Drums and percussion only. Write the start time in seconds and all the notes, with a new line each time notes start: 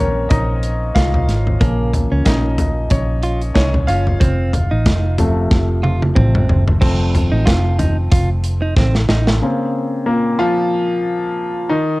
0.30 kick, closed hi-hat
0.63 closed hi-hat
0.96 kick, snare, closed hi-hat
1.14 floor tom
1.29 snare, closed hi-hat
1.47 floor tom
1.61 kick, closed hi-hat
1.93 closed hi-hat, floor tom
2.25 kick, snare, closed hi-hat
2.58 closed hi-hat, floor tom
2.90 kick, closed hi-hat
3.23 closed hi-hat
3.41 closed hi-hat
3.55 kick, snare, closed hi-hat
3.74 floor tom
3.88 closed hi-hat
4.07 floor tom
4.21 kick, closed hi-hat
4.53 closed hi-hat, floor tom
4.86 kick, snare, closed hi-hat
5.18 closed hi-hat, floor tom
5.51 kick, snare
5.84 high tom
6.02 high tom
6.16 kick, mid tom
6.35 mid tom
6.49 floor tom
6.67 floor tom
6.82 kick, crash
7.15 closed hi-hat, floor tom
7.47 kick, snare, closed hi-hat
7.79 closed hi-hat, floor tom
8.11 kick, closed hi-hat
8.44 closed hi-hat
8.77 kick, snare
8.95 snare
9.09 snare
9.27 snare